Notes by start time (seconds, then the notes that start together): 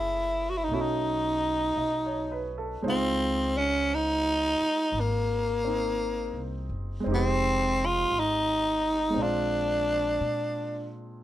Already playing: F#1 A3 C#4 E4 G#4 A#4
0.50 F#4
0.57 E4
0.64 D#4
0.68 B1 A3
0.73 C#4 D#4 E4 F#4
0.81 D#4
1.76 B1 D#5
2.06 C#5
2.31 B4
2.58 A4
2.82 C#2 G#3 D#4 C5
2.88 C4 F4
3.58 C#4
3.94 D#4
4.61 muted upright bass stroke
4.92 G#1
5.00 A#3
5.65 C4 D#4
6.33 C2
6.69 F#1
7.00 G#3 C4
7.06 F1 D#4
7.12 C4 G4
7.86 F4
8.10 G#1
8.20 D#4
9.10 G#3 C4
9.15 A#1 D4
9.22 D4 F4
10.21 A#2